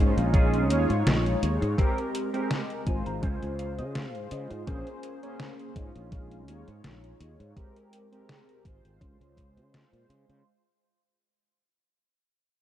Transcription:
Already playing: G#2 G#3 D#4
0.00 C#4 F4
0.17 A#1, closed hi-hat
0.33 C#4 F4 G#4, kick, closed hi-hat
0.54 closed hi-hat
0.68 D#2 G#3 D#4 F4 C#5, closed hi-hat
0.90 G#2, closed hi-hat
1.06 A#1, snare, closed hi-hat
1.26 closed hi-hat
1.42 D#2, muted clean electric guitar stroke, closed hi-hat
1.61 G#2, muted clean electric guitar stroke, closed hi-hat
1.78 G#3 C4 G4 A#4, kick, closed hi-hat
1.98 closed hi-hat
2.14 muted clean electric guitar stroke, closed hi-hat
2.33 G#3 C4 G4 A#4, closed hi-hat
2.51 snare, closed hi-hat
2.70 closed hi-hat
2.85 G#1 G#3 F4 C5 G#5, muted clean electric guitar stroke, kick, closed hi-hat
3.06 G#1 A#5, closed hi-hat
3.23 C#2 C#4 F4 C5 G#5, kick, closed hi-hat
3.43 C#2, closed hi-hat
3.59 F5, closed hi-hat
3.78 C#3 D#5, closed hi-hat
3.95 F5, snare, closed hi-hat
4.15 G#2, closed hi-hat
4.31 C#3 D#5, muted clean electric guitar stroke, closed hi-hat
4.50 G#2, muted clean electric guitar stroke, closed hi-hat
4.67 A#1 A#3 C#4 G#4 C5, kick, closed hi-hat
4.87 closed hi-hat
5.03 muted clean electric guitar stroke, closed hi-hat
5.22 A#3 C#4 G#4 C5, closed hi-hat
5.40 snare, closed hi-hat
5.59 closed hi-hat
5.75 G#2 G#3 C#4 D#4 F4, muted clean electric guitar stroke, kick, closed hi-hat
5.96 A#1, closed hi-hat
6.11 C#4 F4 G#4, kick, closed hi-hat
6.31 closed hi-hat
6.47 D#2 G#3 D#4 F4 C#5, closed hi-hat
6.68 G#2, closed hi-hat
6.84 A#1, snare, closed hi-hat
7.04 closed hi-hat
7.20 D#2, muted clean electric guitar stroke, closed hi-hat
7.40 G#2, muted clean electric guitar stroke, closed hi-hat
7.56 G#3 C4 G4 A#4, kick, closed hi-hat
7.76 closed hi-hat
7.92 muted clean electric guitar stroke, closed hi-hat
8.12 G#3 C4 G4 A#4, closed hi-hat
8.29 snare, closed hi-hat
8.49 closed hi-hat
8.64 G#1 G#3 F4 C5, muted clean electric guitar stroke, kick, closed hi-hat
8.85 G#1, closed hi-hat
9.01 C#2 C#4 F4 C5, kick, closed hi-hat
9.21 C#2, closed hi-hat
9.37 kick, closed hi-hat
9.57 C#3, closed hi-hat
9.74 snare, closed hi-hat
9.93 A#2, closed hi-hat
10.09 C#3, muted clean electric guitar stroke, closed hi-hat
10.29 C#3, muted clean electric guitar stroke, closed hi-hat

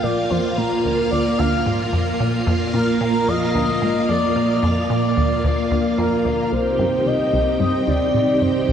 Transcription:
Already playing: A#2 A#3 F4 F5
0.03 A#2 D5
0.30 F2 C5
0.57 A#2 A#4
0.85 D2
1.11 D2 D5
1.38 D2 F5
1.66 G#2
1.93 F2
2.20 A#2
2.47 F2
2.74 A#2 A#4
3.01 A#2
3.28 F2 D#5
3.55 D2
3.82 G#2
4.09 F2 D5
4.36 A#2
4.63 F2
4.90 A#2
5.17 D2
5.44 D2
5.71 D2
5.98 F2 A#4
6.25 D2
6.52 C2 C3 C4 D#4 G4 C5 G5 D6
6.79 G2
7.06 C3 D#5
7.33 C2
7.60 G2 D#5
7.87 D#2 D5
8.14 A#2
8.41 G2 C5
8.68 C2

